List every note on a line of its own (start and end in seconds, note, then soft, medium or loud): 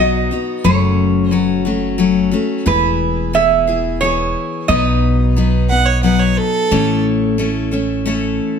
0.00 0.28 B1 medium
0.00 0.30 F#3 soft
0.00 0.31 B3 medium
0.00 0.31 D#4 medium
0.00 0.30 F#4 medium
0.00 0.64 D#5 medium
0.31 0.65 B3 soft
0.31 0.65 D#4 soft
0.31 0.64 F#4 soft
0.64 2.31 F#1 medium
0.64 1.31 F#2 medium
0.64 1.32 C#3 medium
0.64 1.30 F#3 medium
0.64 1.31 A3 medium
0.64 1.31 C#4 medium
0.64 1.31 F#4 medium
0.64 1.33 C#5 medium
1.31 1.65 F#3 medium
1.31 1.65 A3 medium
1.31 1.65 C#4 medium
1.31 1.64 F#4 medium
1.31 1.61 B4 medium
1.65 1.97 F#3 soft
1.65 1.97 A3 soft
1.65 1.98 C#4 soft
1.65 1.99 F#4 medium
1.98 2.32 F#3 medium
1.98 2.32 A3 medium
1.98 2.31 C#4 medium
1.98 2.30 F#4 medium
2.31 2.65 F#3 soft
2.31 2.66 A3 medium
2.31 2.66 C#4 medium
2.31 2.66 F#4 medium
2.66 4.33 E1 medium
2.66 3.32 E3 medium
2.66 3.33 B3 medium
2.66 3.33 E4 medium
2.66 3.34 G#4 medium
2.66 3.36 B4 medium
3.33 3.67 E3 medium
3.33 3.67 B3 medium
3.33 3.67 E4 medium
3.33 3.66 G#4 medium
3.33 3.98 E5 medium
3.67 4.01 B3 soft
3.67 4.02 E4 soft
3.67 4.01 G#4 soft
4.01 4.69 E3 medium
4.01 4.68 B3 medium
4.01 4.69 E4 medium
4.01 4.69 G#4 medium
4.01 4.70 C#5 medium
4.68 6.35 B1 medium
4.68 5.36 B2 medium
4.68 5.35 F#3 medium
4.68 5.36 B3 medium
4.68 5.37 D#4 medium
4.68 5.37 B4 medium
4.68 5.66 D#5 medium
5.36 5.70 F#3 medium
5.36 5.70 B3 medium
5.36 5.69 D#4 medium
5.36 5.68 B4 medium
5.69 6.03 B3 soft
5.69 6.04 D#4 soft
5.69 6.03 B4 soft
5.69 5.88 F#5 medium
5.86 6.02 C#5 medium
6.03 6.71 F#3 medium
6.03 6.71 B3 medium
6.03 6.72 D#4 medium
6.03 6.72 B4 medium
6.03 6.21 F#5 medium
6.20 6.39 C#5 medium
6.37 7.03 A4 medium
6.71 8.38 A1 medium
6.71 7.39 A2 medium
6.71 8.59 E3 medium
6.71 7.37 A3 medium
6.71 7.38 C#4 medium
6.71 7.39 E4 medium
6.71 7.39 A4 medium
7.38 7.72 A3 medium
7.38 7.71 C#4 medium
7.38 7.71 E4 medium
7.38 7.70 A4 medium
7.71 8.04 A3 soft
7.71 8.05 C#4 soft
7.71 8.06 E4 soft
7.71 8.05 A4 soft
8.06 8.59 A3 medium
8.06 8.59 C#4 medium
8.06 8.59 E4 medium
8.06 8.59 A4 medium